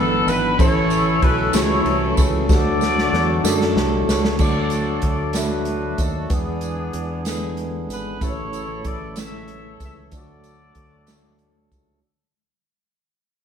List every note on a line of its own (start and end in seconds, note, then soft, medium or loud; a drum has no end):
0.00 0.25 G1 medium
0.00 0.62 E3 medium
0.00 2.46 E3 medium
0.00 0.61 F#3 medium
0.00 0.61 G#3 medium
0.00 0.58 B3 medium
0.00 0.61 B3 medium
0.00 0.55 D4 medium
0.00 0.62 D4 medium
0.00 0.59 E4 medium
0.00 0.28 A4 loud
0.00 0.57 B4 medium
0.00 0.61 B4 medium
0.00 0.52 D5 medium
0.27 0.56 G#1 loud
0.27 0.60 B4 loud
0.27 ride medium
0.27 tambourine medium
0.58 1.18 A1 loud
0.58 1.50 A2 medium
0.58 4.36 A3 medium
0.58 1.47 C#4 medium
0.58 2.47 C#4 medium
0.58 1.47 E4 medium
0.58 1.51 E4 medium
0.58 4.36 A4 medium
0.58 1.47 A4 medium
0.58 1.51 A4 medium
0.58 1.19 C#5 loud
0.58 kick loud
0.58 ride medium
0.58 tambourine soft
0.90 ride soft
0.90 tambourine medium
1.22 1.52 B1 loud
1.22 1.54 B4 loud
1.22 kick medium
1.22 ride medium
1.53 1.83 C#2 loud
1.53 2.42 C#4 medium
1.53 2.42 E4 medium
1.53 2.34 E4 medium
1.53 2.42 F#4 medium
1.53 2.34 A4 medium
1.53 2.23 C#5 loud
1.53 snare loud
1.53 ride medium
1.53 tambourine loud
1.85 2.15 C2 medium
1.85 ride soft
2.17 2.47 C#2 medium
2.17 kick medium
2.17 ride medium
2.17 tambourine medium
2.48 3.09 D2 loud
2.48 3.40 D3 medium
2.48 4.38 F#3 medium
2.48 3.37 D4 medium
2.48 4.38 D4 medium
2.48 3.37 F#4 medium
2.48 3.44 F#4 medium
2.48 2.56 G4 medium
2.48 3.46 A4 medium
2.48 3.73 D5 loud
2.48 kick loud
2.48 snare medium
2.48 tambourine medium
2.56 3.41 A4 medium
2.81 snare medium
2.81 tambourine medium
2.98 snare medium
3.13 3.42 E2 medium
3.13 snare medium
3.44 3.73 F#2 medium
3.44 4.32 D4 medium
3.44 4.37 D4 medium
3.44 4.33 F#4 medium
3.44 4.36 F#4 medium
3.44 4.33 A4 loud
3.44 4.05 A4 medium
3.44 snare medium
3.44 tambourine loud
3.61 snare medium
3.76 4.05 C2 medium
3.76 snare loud
4.08 4.37 C#2 medium
4.08 4.41 C#5 medium
4.08 snare loud
4.08 tambourine medium
4.24 snare loud
4.39 4.99 D2 medium
4.39 5.31 D3 soft
4.39 6.29 F#3 medium
4.39 5.28 A3 medium
4.39 6.29 A3 medium
4.39 8.17 D4 medium
4.39 5.28 D4 medium
4.39 5.28 F#4 medium
4.39 5.32 F#4 medium
4.39 6.28 A4 medium
4.39 5.32 A4 medium
4.39 5.04 D5 medium
4.39 5.29 D5 medium
4.39 kick loud
4.39 crash medium
4.39 tambourine soft
4.70 closed hi-hat soft
4.70 tambourine soft
5.02 5.94 D2 medium
5.02 kick medium
5.02 closed hi-hat medium
5.06 5.34 D5 medium
5.33 6.23 A3 medium
5.33 6.23 D4 medium
5.33 6.24 F#4 medium
5.33 6.24 E5 medium
5.33 snare loud
5.33 closed hi-hat medium
5.33 tambourine medium
5.38 6.28 D4 medium
5.38 6.28 F#4 medium
5.38 6.00 B4 medium
5.65 closed hi-hat soft
5.98 6.28 D#2 medium
5.98 6.32 A4 medium
5.98 kick medium
5.98 closed hi-hat medium
5.98 tambourine soft
6.29 6.90 E2 loud
6.29 7.22 E3 soft
6.29 10.09 E3 medium
6.29 7.18 G#3 medium
6.29 8.19 B3 medium
6.29 7.23 B3 medium
6.29 7.18 D4 medium
6.29 7.23 D4 medium
6.29 7.18 E4 medium
6.29 8.20 G#4 medium
6.29 7.19 B4 medium
6.29 kick loud
6.29 closed hi-hat medium
6.29 tambourine soft
6.34 7.27 G#4 medium
6.61 closed hi-hat soft
6.61 tambourine soft
6.93 7.85 E2 medium
6.93 closed hi-hat medium
7.25 8.14 G#3 medium
7.25 8.14 D4 medium
7.25 8.14 E4 medium
7.25 7.61 G#4 medium
7.25 7.33 A4 medium
7.25 snare loud
7.25 closed hi-hat medium
7.25 tambourine medium
7.33 8.18 B4 medium
7.57 closed hi-hat soft
7.89 8.18 G#1 medium
7.89 8.21 B4 medium
7.89 closed hi-hat medium
7.89 tambourine soft
8.21 8.81 A1 medium
8.21 9.13 A2 medium
8.21 10.11 C#3 medium
8.21 9.10 A3 medium
8.21 12.00 A3 medium
8.21 9.10 C#4 medium
8.21 9.10 E4 medium
8.21 9.14 E4 medium
8.21 12.00 A4 medium
8.21 9.14 A4 medium
8.21 8.29 B4 medium
8.21 8.86 C#5 loud
8.21 kick loud
8.21 closed hi-hat medium
8.21 tambourine soft
8.29 9.14 C#5 medium
8.53 closed hi-hat soft
8.53 tambourine soft
8.85 9.77 A1 medium
8.85 9.18 D5 medium
8.85 kick medium
8.85 closed hi-hat medium
9.16 10.05 A3 medium
9.16 10.05 C#4 medium
9.16 10.06 E4 medium
9.16 10.09 A4 medium
9.16 10.06 B4 medium
9.16 10.09 C#5 medium
9.16 9.78 E5 loud
9.16 snare loud
9.16 closed hi-hat medium
9.16 tambourine medium
9.48 closed hi-hat soft
9.80 10.10 C#2 medium
9.80 kick medium
9.80 closed hi-hat medium
9.80 tambourine soft
9.84 9.98 E5 medium
10.12 10.72 D2 medium
10.12 11.04 D3 soft
10.12 12.02 F#3 medium
10.12 11.01 A3 medium
10.12 11.01 D4 medium
10.12 12.02 D4 medium
10.12 10.20 F4 soft
10.12 11.69 A4 medium
10.12 11.02 D5 medium
10.12 kick medium
10.12 closed hi-hat medium
10.12 tambourine soft
10.16 11.70 F#4 medium
10.16 11.04 F#4 medium
10.16 11.70 D5 medium
10.44 closed hi-hat soft
10.44 tambourine soft
10.75 11.68 D2 medium
10.75 kick medium
10.75 closed hi-hat medium
11.07 11.96 A3 medium
11.07 11.96 D4 medium
11.07 11.97 F#4 medium
11.07 11.97 D5 medium
11.07 snare loud
11.07 closed hi-hat medium
11.07 tambourine medium
11.39 closed hi-hat soft
11.71 12.01 C#2 medium
11.71 kick medium
11.71 closed hi-hat medium
11.71 tambourine soft